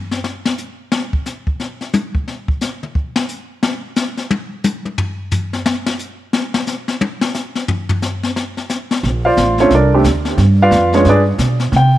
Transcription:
0.11 snare medium
0.24 snare medium
0.45 snare medium
0.58 hi-hat pedal medium
0.92 snare medium
1.13 kick medium
1.26 snare soft
1.26 hi-hat pedal medium
1.47 kick medium
1.60 snare soft
1.81 snare soft
1.93 hi-hat pedal medium
1.93 high tom loud
2.15 kick medium
2.28 snare soft
2.48 kick medium
2.61 snare soft
2.61 hi-hat pedal medium
2.83 mid tom soft
2.95 kick medium
3.16 snare medium
3.29 hi-hat pedal medium
3.63 snare loud
3.96 snare medium
3.96 hi-hat pedal medium
4.17 snare soft
4.31 high tom loud
4.64 hi-hat pedal medium
4.64 high tom loud
4.85 high tom soft
4.98 floor tom loud
5.31 floor tom medium
5.31 hi-hat pedal medium
5.53 snare medium
5.66 snare loud
5.86 snare medium
5.99 hi-hat pedal medium
6.33 snare medium
6.54 snare loud
6.67 snare soft
6.67 hi-hat pedal medium
6.88 snare medium
7.01 high tom loud
7.21 snare medium
7.34 snare soft
7.34 hi-hat pedal medium
7.55 snare soft
7.68 floor tom medium
7.89 floor tom medium
8.02 snare soft
8.02 hi-hat pedal medium
8.23 snare soft
8.36 snare medium
8.57 snare soft
8.69 snare soft
8.69 hi-hat pedal medium
8.91 snare medium
9.03 9.36 A#1 medium
9.03 brush sweep soft
9.03 kick soft
9.03 snare soft
9.25 9.57 F4 medium
9.25 9.57 C5 medium
9.25 9.57 D5 medium
9.25 9.56 F5 medium
9.37 9.70 A1 medium
9.37 kick soft
9.37 snare medium
9.37 hi-hat pedal medium
9.58 9.71 A3 medium
9.58 9.71 C4 medium
9.58 9.72 C#4 medium
9.58 9.71 D4 medium
9.58 9.71 F4 medium
9.58 9.72 C#5 medium
9.58 snare soft
9.70 10.04 C2 medium
9.70 brush sweep medium
9.70 kick soft
9.70 snare soft
9.75 9.93 D4 medium
9.75 9.93 A4 medium
9.75 9.94 A#4 medium
9.75 9.93 D5 medium
9.94 10.05 A3 medium
9.94 10.05 C4 medium
9.94 10.05 D4 medium
9.94 10.05 G4 medium
10.04 10.37 D2 medium
10.04 kick soft
10.04 snare medium
10.04 hi-hat pedal medium
10.25 snare soft
10.37 10.70 G2 medium
10.37 brush sweep soft
10.37 kick soft
10.37 snare soft
10.62 10.93 F4 medium
10.62 10.92 B4 medium
10.62 10.93 D5 medium
10.62 10.93 F5 medium
10.71 11.04 F2 loud
10.71 kick soft
10.71 snare medium
10.71 hi-hat pedal medium
10.93 11.05 G#3 medium
10.93 11.05 B3 medium
10.93 11.07 C#4 medium
10.93 11.05 D4 medium
10.93 11.05 F4 medium
10.93 11.07 C#5 medium
10.93 snare soft
11.05 11.38 G2 medium
11.05 11.20 B4 medium
11.05 brush sweep medium
11.05 kick soft
11.05 snare soft
11.09 11.21 D4 medium
11.09 11.21 G#4 medium
11.09 11.21 D5 medium
11.38 11.71 B2 medium
11.38 kick soft
11.38 snare medium
11.38 hi-hat pedal medium
11.60 snare soft
11.72 11.98 C3 medium
11.72 brush sweep soft
11.72 kick soft
11.72 snare soft
11.76 11.98 G5 medium

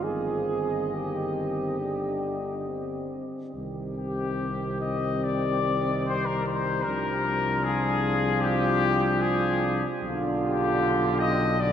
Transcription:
0.01 3.22 G1 soft
0.01 0.92 D#3 soft
0.01 0.90 C4 soft
0.01 0.92 G#4 medium
0.01 3.07 D#5 medium
0.90 1.78 D#3 soft
0.90 1.81 C4 medium
0.90 3.12 G4 medium
1.79 3.19 D3 soft
1.79 2.68 D4 medium
2.67 3.54 C4 soft
3.54 6.83 C2 medium
3.54 6.84 D#3 medium
3.54 6.83 C4 medium
3.54 7.62 G4 medium
3.97 4.77 G4 medium
4.81 5.23 D#5 medium
5.24 6.07 D5 medium
6.06 6.27 C5 medium
6.26 6.47 A#4 medium
6.45 6.85 C5 medium
6.83 9.86 C2 medium
6.83 9.86 F3 medium
6.83 9.84 D4 medium
6.83 7.64 A#4 loud
7.64 9.88 F4 medium
7.64 8.45 G#4 loud
8.41 9.23 G4 loud
9.21 10.02 G#4 medium
10.01 11.72 B1 medium
10.01 11.57 D3 medium
10.01 11.56 D4 medium
10.01 11.57 F4 medium
10.42 11.17 G4 loud
11.18 11.59 D#5 loud
11.59 11.72 D3 medium
11.59 11.72 D4 medium
11.59 11.72 F4 medium
11.59 11.72 D5 loud

